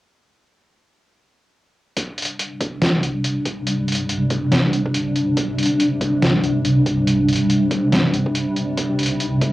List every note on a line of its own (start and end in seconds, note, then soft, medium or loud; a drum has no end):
1.96 9.53 C3 medium
1.96 9.53 G3 medium
1.96 8.73 D4 medium
1.96 kick loud
1.96 closed hi-hat medium
2.18 closed hi-hat soft
2.22 closed hi-hat medium
2.25 closed hi-hat medium
2.39 closed hi-hat medium
2.60 kick loud
2.60 closed hi-hat medium
2.82 snare loud
2.82 closed hi-hat medium
3.03 closed hi-hat soft
3.24 closed hi-hat medium
3.45 kick medium
3.45 closed hi-hat soft
3.67 closed hi-hat medium
3.88 closed hi-hat soft
3.92 closed hi-hat medium
3.95 closed hi-hat medium
4.09 closed hi-hat medium
4.30 kick loud
4.30 closed hi-hat soft
4.52 snare loud
4.52 closed hi-hat medium
4.73 closed hi-hat soft
4.86 kick medium
4.94 closed hi-hat medium
5.16 closed hi-hat soft
5.37 kick loud
5.37 closed hi-hat medium
5.58 closed hi-hat soft
5.63 closed hi-hat medium
5.65 closed hi-hat medium
5.80 closed hi-hat medium
6.01 kick loud
6.01 closed hi-hat soft
6.22 snare loud
6.22 closed hi-hat medium
6.44 closed hi-hat soft
6.65 closed hi-hat medium
6.86 kick medium
6.86 closed hi-hat soft
7.07 closed hi-hat medium
7.29 closed hi-hat soft
7.33 closed hi-hat medium
7.36 closed hi-hat medium
7.50 closed hi-hat medium
7.71 kick loud
7.71 closed hi-hat soft
7.92 snare loud
7.92 closed hi-hat medium
8.14 closed hi-hat soft
8.26 kick medium
8.35 closed hi-hat medium
8.56 closed hi-hat soft
8.77 9.53 D#4 medium
8.77 kick loud
8.77 closed hi-hat medium
8.99 closed hi-hat soft
9.03 closed hi-hat medium
9.06 closed hi-hat medium
9.20 closed hi-hat medium
9.41 kick loud
9.41 closed hi-hat soft